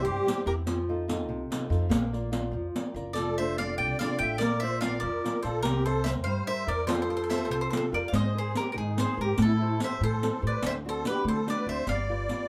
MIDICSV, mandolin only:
0, 0, Header, 1, 2, 480
1, 0, Start_track
1, 0, Tempo, 415225
1, 763, Time_signature, 6, 3, 24, 8
1, 14427, End_track
2, 0, Start_track
2, 0, Title_t, "Mandolin"
2, 0, Program_c, 0, 25
2, 55, Note_on_c, 0, 72, 76
2, 505, Note_off_c, 0, 72, 0
2, 543, Note_on_c, 0, 70, 66
2, 603, Note_off_c, 0, 70, 0
2, 3622, Note_on_c, 0, 74, 84
2, 3901, Note_off_c, 0, 74, 0
2, 3906, Note_on_c, 0, 76, 81
2, 4117, Note_off_c, 0, 76, 0
2, 4141, Note_on_c, 0, 77, 79
2, 4364, Note_off_c, 0, 77, 0
2, 4369, Note_on_c, 0, 79, 83
2, 4608, Note_off_c, 0, 79, 0
2, 4612, Note_on_c, 0, 77, 89
2, 4828, Note_off_c, 0, 77, 0
2, 4840, Note_on_c, 0, 79, 94
2, 5056, Note_off_c, 0, 79, 0
2, 5065, Note_on_c, 0, 74, 96
2, 5316, Note_on_c, 0, 76, 89
2, 5341, Note_off_c, 0, 74, 0
2, 5552, Note_off_c, 0, 76, 0
2, 5557, Note_on_c, 0, 77, 83
2, 5773, Note_off_c, 0, 77, 0
2, 5778, Note_on_c, 0, 74, 81
2, 6240, Note_off_c, 0, 74, 0
2, 6273, Note_on_c, 0, 72, 70
2, 6498, Note_off_c, 0, 72, 0
2, 6503, Note_on_c, 0, 70, 97
2, 6765, Note_off_c, 0, 70, 0
2, 6770, Note_on_c, 0, 72, 87
2, 6981, Note_off_c, 0, 72, 0
2, 6981, Note_on_c, 0, 76, 88
2, 7045, Note_off_c, 0, 76, 0
2, 7212, Note_on_c, 0, 77, 81
2, 7478, Note_off_c, 0, 77, 0
2, 7483, Note_on_c, 0, 76, 97
2, 7718, Note_off_c, 0, 76, 0
2, 7727, Note_on_c, 0, 74, 83
2, 7933, Note_off_c, 0, 74, 0
2, 7942, Note_on_c, 0, 72, 83
2, 8017, Note_off_c, 0, 72, 0
2, 8031, Note_on_c, 0, 72, 55
2, 8101, Note_off_c, 0, 72, 0
2, 8115, Note_on_c, 0, 72, 60
2, 8197, Note_off_c, 0, 72, 0
2, 8211, Note_on_c, 0, 72, 49
2, 8271, Note_off_c, 0, 72, 0
2, 8284, Note_on_c, 0, 72, 64
2, 8352, Note_off_c, 0, 72, 0
2, 8366, Note_on_c, 0, 72, 51
2, 8420, Note_off_c, 0, 72, 0
2, 8434, Note_on_c, 0, 72, 57
2, 8440, Note_on_c, 0, 76, 64
2, 8515, Note_off_c, 0, 72, 0
2, 8528, Note_on_c, 0, 72, 47
2, 8598, Note_off_c, 0, 72, 0
2, 8612, Note_on_c, 0, 72, 54
2, 8651, Note_off_c, 0, 76, 0
2, 8672, Note_off_c, 0, 72, 0
2, 8686, Note_on_c, 0, 72, 78
2, 8704, Note_off_c, 0, 72, 0
2, 8704, Note_on_c, 0, 72, 41
2, 8785, Note_off_c, 0, 72, 0
2, 8799, Note_on_c, 0, 72, 61
2, 8887, Note_off_c, 0, 72, 0
2, 8907, Note_on_c, 0, 72, 55
2, 8971, Note_off_c, 0, 72, 0
2, 8985, Note_on_c, 0, 72, 67
2, 9059, Note_off_c, 0, 72, 0
2, 9182, Note_on_c, 0, 74, 72
2, 9332, Note_off_c, 0, 74, 0
2, 9342, Note_on_c, 0, 77, 74
2, 9394, Note_off_c, 0, 77, 0
2, 9423, Note_on_c, 0, 75, 72
2, 9679, Note_off_c, 0, 75, 0
2, 9692, Note_on_c, 0, 72, 80
2, 9889, Note_off_c, 0, 72, 0
2, 9908, Note_on_c, 0, 70, 70
2, 10068, Note_off_c, 0, 70, 0
2, 10082, Note_on_c, 0, 70, 52
2, 10128, Note_off_c, 0, 70, 0
2, 10147, Note_on_c, 0, 68, 63
2, 10378, Note_off_c, 0, 68, 0
2, 10400, Note_on_c, 0, 72, 85
2, 10627, Note_off_c, 0, 72, 0
2, 10647, Note_on_c, 0, 70, 69
2, 10866, Note_off_c, 0, 70, 0
2, 10891, Note_on_c, 0, 69, 78
2, 11327, Note_off_c, 0, 69, 0
2, 11378, Note_on_c, 0, 76, 75
2, 11571, Note_off_c, 0, 76, 0
2, 11601, Note_on_c, 0, 72, 94
2, 12039, Note_off_c, 0, 72, 0
2, 12103, Note_on_c, 0, 74, 77
2, 12292, Note_off_c, 0, 74, 0
2, 12328, Note_on_c, 0, 76, 98
2, 12392, Note_off_c, 0, 76, 0
2, 12587, Note_on_c, 0, 72, 86
2, 12779, Note_off_c, 0, 72, 0
2, 12797, Note_on_c, 0, 71, 89
2, 12997, Note_off_c, 0, 71, 0
2, 13045, Note_on_c, 0, 72, 80
2, 13266, Note_off_c, 0, 72, 0
2, 13293, Note_on_c, 0, 74, 94
2, 13490, Note_off_c, 0, 74, 0
2, 13513, Note_on_c, 0, 76, 79
2, 13736, Note_off_c, 0, 76, 0
2, 13743, Note_on_c, 0, 77, 87
2, 14427, Note_off_c, 0, 77, 0
2, 14427, End_track
0, 0, End_of_file